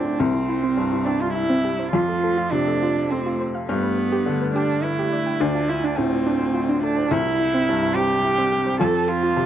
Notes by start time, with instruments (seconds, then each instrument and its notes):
Already playing: upright piano D2 A2 C4 F4, ambient pad A3 F4 C5, cello D4
0.05 synth pluck C5
0.19 upright piano C2, ambient pad G3 E4 D5, cello C4, synth pluck C4
0.34 synth pluck E4
0.49 synth pluck E4
0.63 synth pluck C4
0.77 upright piano G2
0.92 synth pluck E4
1.05 synth pluck C4, cello D4
1.21 cello F4
1.33 cello E4, synth pluck E4
1.49 synth pluck C4
1.64 synth pluck G4
1.79 synth pluck C5
1.92 upright piano F2, ambient pad A3 F4 C5, cello F4, synth pluck F4
2.09 synth pluck A4
2.24 synth pluck A4
2.38 synth pluck F4
2.51 upright piano C3, cello D4
2.68 synth pluck A4
2.82 synth pluck F4
3.11 cello C4, synth pluck A4
3.26 synth pluck F4
3.40 synth pluck C5
3.55 synth pluck F5
3.68 upright piano G2, cello B3, ambient pad D4 D5, synth pluck G4
3.83 synth pluck B4
3.98 synth pluck B4
4.12 synth pluck G4
4.26 upright piano D3
4.41 synth pluck B4
4.55 cello D4, synth pluck G4
4.83 cello E4, synth pluck B4
4.99 synth pluck G4
5.13 synth pluck D5
5.26 synth pluck G5
5.40 upright piano D2, synth pluck D4, cello D4, ambient pad F4
5.54 synth pluck F4
5.69 cello E4, synth pluck F4
5.84 synth pluck D4, cello D4
5.97 upright piano A2, cello C4
6.13 synth pluck F4
6.26 synth pluck D4
6.54 synth pluck F4
6.69 synth pluck D4
6.83 cello D4, synth pluck A4
6.97 synth pluck C5
7.11 upright piano C2, ambient pad C4 G4, synth pluck C4, cello E4
7.26 synth pluck E4
7.40 synth pluck E4
7.54 synth pluck C4
7.69 upright piano G2
7.82 synth pluck E4
7.95 synth pluck C4, cello G4
8.25 synth pluck E4
8.38 synth pluck C4
8.52 synth pluck G4
8.66 synth pluck C5
8.79 upright piano F2, synth pluck F4, cello A4, ambient pad A4 C5
8.94 synth pluck A4
9.08 cello F4, synth pluck A4
9.23 synth pluck F4
9.37 upright piano C3